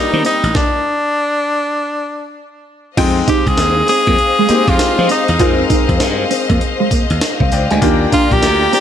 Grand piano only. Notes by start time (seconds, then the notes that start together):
Already playing: G3 A#3 D4 F4 G4 D5
2.97 G#3 C4 D#4 G5
4.49 G#3 C4 D#4 G4
5.40 G#3 C4 D#4 A#4
7.41 C5 F5
7.52 D5 G5
7.71 D#5 G#5
7.82 A#3 D4 F4 G4